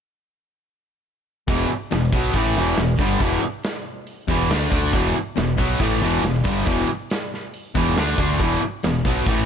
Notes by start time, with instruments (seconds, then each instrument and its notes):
1.48 fingered electric bass E1, distorted electric guitar E2 B2 E3, kick, open hi-hat
1.69 muted distorted electric guitar stroke, muted fingered electric bass stroke
1.91 fingered electric bass E1, distorted electric guitar E2 B2, snare, open hi-hat
2.12 fingered electric bass B1, distorted electric guitar B2 F#3 B3, kick
2.34 fingered electric bass A1, distorted electric guitar A2 E3 A3, kick, open hi-hat
2.56 fingered electric bass E1, distorted electric guitar E2 B2 E3
2.76 fingered electric bass E1, distorted electric guitar E2 B2, snare, open hi-hat
2.99 fingered electric bass G1, distorted electric guitar G2 D3 G3, kick
3.20 fingered electric bass E1, distorted electric guitar E2 B2 E3, kick, open hi-hat
3.32 snare
3.42 muted fingered electric bass stroke, muted distorted electric guitar stroke
3.63 snare, open hi-hat
4.07 open hi-hat
4.28 fingered electric bass E1, distorted electric guitar E2 B2 E3, kick
4.50 fingered electric bass D2, distorted electric guitar D3 A3 D4, snare, open hi-hat
4.71 fingered electric bass D2, distorted electric guitar D3 A3 D4, kick
4.93 fingered electric bass E1, distorted electric guitar E2 B2 E3, kick, open hi-hat
5.15 muted distorted electric guitar stroke, muted fingered electric bass stroke
5.36 fingered electric bass E1, distorted electric guitar E2 B2, snare, open hi-hat
5.57 fingered electric bass B1, distorted electric guitar B2 F#3 B3, kick
5.79 fingered electric bass A1, distorted electric guitar A2 E3 A3, kick, open hi-hat
6.01 fingered electric bass E1, distorted electric guitar E2 B2 E3
6.22 fingered electric bass E1, distorted electric guitar E2 B2, snare, open hi-hat
6.44 fingered electric bass G1, distorted electric guitar G2 D3 G3, kick
6.65 fingered electric bass E1, distorted electric guitar E2 B2 E3, kick, open hi-hat
6.80 snare
6.88 muted fingered electric bass stroke, muted distorted electric guitar stroke
7.10 snare, open hi-hat
7.34 snare
7.54 open hi-hat
7.75 fingered electric bass E1, distorted electric guitar E2 B2 E3, kick
7.96 fingered electric bass D2, distorted electric guitar D3 A3 D4, snare, open hi-hat
8.18 fingered electric bass D2, distorted electric guitar D3 A3 D4, kick
8.40 fingered electric bass E1, distorted electric guitar E2 B2 E3, kick, open hi-hat
8.62 muted distorted electric guitar stroke, muted fingered electric bass stroke
8.83 fingered electric bass E1, distorted electric guitar E2 B2, snare, open hi-hat
9.05 fingered electric bass B1, distorted electric guitar B2 F#3 B3, kick
9.26 fingered electric bass A1, distorted electric guitar A2 E3 A3, kick, open hi-hat